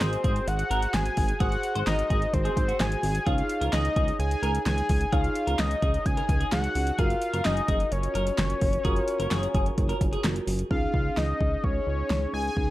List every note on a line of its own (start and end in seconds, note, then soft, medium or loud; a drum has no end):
0.00 0.17 G#1 loud
0.00 1.37 F#4 medium
0.00 1.37 G#4 medium
0.00 0.17 G#4 medium
0.00 1.37 C5 medium
0.00 0.49 C5 loud
0.00 snare loud
0.00 clap medium
0.00 closed hi-hat medium
0.13 closed hi-hat medium
0.24 0.41 G#1 loud
0.24 0.32 G#4 medium
0.24 kick loud
0.24 closed hi-hat medium
0.36 closed hi-hat soft
0.47 0.64 G#1 loud
0.47 0.95 F#5 loud
0.47 closed hi-hat medium
0.59 closed hi-hat medium
0.71 0.87 G#1 loud
0.71 0.79 A#4 medium
0.71 closed hi-hat medium
0.82 closed hi-hat medium
0.94 1.10 G#1 loud
0.94 1.40 G#5 loud
0.94 snare loud
0.94 clap loud
0.94 closed hi-hat medium
1.05 closed hi-hat medium
1.17 1.34 G#1 loud
1.17 kick medium
1.17 open hi-hat medium
1.28 closed hi-hat medium
1.40 1.57 G#1 loud
1.40 3.23 F#4 medium
1.40 1.48 G#4 loud
1.40 3.23 G#4 medium
1.40 3.23 C5 medium
1.40 1.84 F#5 loud
1.40 kick loud
1.40 closed hi-hat medium
1.52 closed hi-hat medium
1.63 closed hi-hat medium
1.75 1.83 G#1 medium
1.75 1.83 C5 medium
1.75 closed hi-hat medium
1.87 2.03 G#1 loud
1.87 2.03 A#4 medium
1.87 2.35 D#5 loud
1.87 snare loud
1.87 clap medium
1.87 closed hi-hat medium
1.99 closed hi-hat medium
2.10 2.27 G#1 loud
2.10 2.18 G#4 medium
2.10 kick medium
2.10 closed hi-hat medium
2.22 closed hi-hat medium
2.33 2.50 G#1 loud
2.33 2.82 C5 loud
2.33 kick medium
2.33 closed hi-hat medium
2.45 2.53 G#4 medium
2.45 closed hi-hat medium
2.57 2.73 G#1 loud
2.57 kick medium
2.57 closed hi-hat medium
2.68 2.76 F#4 medium
2.68 closed hi-hat medium
2.80 2.96 G#1 loud
2.80 3.28 G#5 loud
2.80 snare loud
2.80 clap medium
2.80 closed hi-hat medium
2.92 closed hi-hat medium
3.03 3.19 G#1 loud
3.03 open hi-hat medium
3.15 closed hi-hat medium
3.26 3.43 C#2 loud
3.26 5.09 D#4 medium
3.26 5.09 G#4 medium
3.26 3.34 G#4 loud
3.26 5.09 C#5 medium
3.26 3.72 F5 loud
3.26 kick loud
3.26 closed hi-hat medium
3.38 closed hi-hat medium
3.49 closed hi-hat medium
3.61 3.69 C#2 loud
3.61 3.69 A#4 medium
3.61 closed hi-hat medium
3.73 3.89 C#2 loud
3.73 3.89 G#4 medium
3.73 4.16 D#5 loud
3.73 snare loud
3.73 clap medium
3.73 closed hi-hat medium
3.85 closed hi-hat medium
3.96 4.13 C#2 loud
3.96 4.04 G#4 medium
3.96 kick medium
3.96 closed hi-hat medium
4.08 closed hi-hat medium
4.19 4.36 C#2 loud
4.19 4.63 G#5 loud
4.19 closed hi-hat medium
4.31 closed hi-hat medium
4.43 4.59 C#2 loud
4.43 4.51 A#4 medium
4.43 closed hi-hat medium
4.55 closed hi-hat medium
4.66 4.82 C#2 loud
4.66 5.14 G#5 loud
4.66 snare loud
4.66 clap medium
4.66 closed hi-hat medium
4.78 closed hi-hat medium
4.89 5.06 C#2 loud
4.89 kick medium
4.89 open hi-hat medium
5.01 closed hi-hat medium
5.12 5.29 C#2 loud
5.12 6.95 D#4 medium
5.12 5.20 G#4 loud
5.12 6.95 G#4 medium
5.12 6.95 C#5 medium
5.12 5.61 F5 loud
5.12 kick loud
5.12 closed hi-hat medium
5.24 closed hi-hat medium
5.35 closed hi-hat medium
5.47 5.56 C#2 loud
5.47 5.55 A#4 medium
5.47 closed hi-hat medium
5.59 5.75 C#2 loud
5.59 5.75 G#4 medium
5.59 6.07 D#5 loud
5.59 snare loud
5.59 clap medium
5.59 closed hi-hat medium
5.71 closed hi-hat medium
5.82 5.99 C#2 loud
5.82 5.90 G#4 medium
5.82 kick loud
5.82 closed hi-hat medium
5.94 closed hi-hat medium
6.06 6.22 C#2 loud
6.06 6.52 G#5 loud
6.06 kick medium
6.06 closed hi-hat medium
6.17 6.25 A#4 medium
6.17 closed hi-hat medium
6.29 6.45 C#2 loud
6.29 kick medium
6.29 closed hi-hat medium
6.40 6.48 G#4 medium
6.40 closed hi-hat medium
6.52 6.68 C#2 loud
6.52 7.00 F#5 loud
6.52 snare loud
6.52 clap loud
6.52 closed hi-hat medium
6.64 closed hi-hat medium
6.75 6.92 C#2 loud
6.75 open hi-hat medium
6.87 closed hi-hat medium
6.99 7.15 F#1 loud
6.99 8.81 F4 medium
6.99 8.81 F#4 medium
6.99 7.07 G#4 loud
6.99 8.81 A#4 medium
6.99 7.47 F5 loud
6.99 kick loud
6.99 closed hi-hat medium
7.10 closed hi-hat medium
7.22 closed hi-hat medium
7.34 7.42 F#1 medium
7.34 7.41 A#4 medium
7.34 closed hi-hat medium
7.45 7.62 F#1 loud
7.45 7.61 G#4 medium
7.45 7.93 D#5 loud
7.45 snare loud
7.45 clap medium
7.45 closed hi-hat medium
7.57 closed hi-hat medium
7.68 7.85 F#1 loud
7.68 7.76 G#4 medium
7.68 kick medium
7.68 closed hi-hat medium
7.80 closed hi-hat soft
7.92 8.08 F#1 loud
7.92 10.24 C#5 medium
7.92 closed hi-hat medium
8.03 closed hi-hat medium
8.15 8.31 F#1 loud
8.15 8.23 A#4 medium
8.15 closed hi-hat medium
8.27 closed hi-hat medium
8.38 8.55 F#1 loud
8.38 snare loud
8.38 clap loud
8.38 closed hi-hat medium
8.50 closed hi-hat medium
8.61 8.78 F#1 loud
8.61 kick medium
8.61 open hi-hat medium
8.73 closed hi-hat medium
8.85 9.01 F#1 loud
8.85 10.67 F4 medium
8.85 10.67 F#4 medium
8.85 8.93 G#4 loud
8.85 10.67 A#4 medium
8.85 kick loud
8.85 closed hi-hat medium
8.96 closed hi-hat medium
9.08 closed hi-hat medium
9.20 9.28 F#1 loud
9.20 9.28 A#4 medium
9.20 closed hi-hat medium
9.31 9.48 F#1 loud
9.31 9.47 G#4 medium
9.31 snare loud
9.31 clap medium
9.31 closed hi-hat medium
9.43 closed hi-hat medium
9.54 9.71 F#1 loud
9.54 9.63 G#4 medium
9.54 kick loud
9.54 closed hi-hat medium
9.66 closed hi-hat soft
9.78 9.94 F#1 loud
9.78 kick medium
9.78 closed hi-hat medium
9.89 9.97 A#4 medium
9.89 closed hi-hat medium
10.01 10.17 F#1 loud
10.01 kick medium
10.01 closed hi-hat medium
10.13 10.21 G#4 medium
10.13 closed hi-hat medium
10.24 10.40 F#1 loud
10.24 snare loud
10.24 clap loud
10.24 closed hi-hat medium
10.36 closed hi-hat medium
10.47 10.64 F#1 loud
10.47 open hi-hat medium
10.59 closed hi-hat medium
10.71 10.87 C#2 loud
10.71 12.53 C#4 medium
10.71 12.53 D#4 medium
10.71 12.53 G#4 medium
10.71 11.19 F5 medium
10.71 kick loud
10.94 11.10 C#2 loud
10.94 kick medium
11.17 11.34 C#2 loud
11.17 11.65 D#5 medium
11.17 snare loud
11.41 11.57 C#2 loud
11.41 kick medium
11.64 11.80 C#2 loud
11.64 12.33 C#5 medium
11.64 kick medium
11.87 12.03 C#2 medium
12.10 12.27 C#2 medium
12.10 snare loud
12.34 12.50 C#2 loud
12.34 12.70 G#5 loud
12.56 12.70 C#2 loud
12.56 12.70 C#4 medium
12.56 12.70 D#4 medium
12.56 12.70 G#4 medium
12.56 kick loud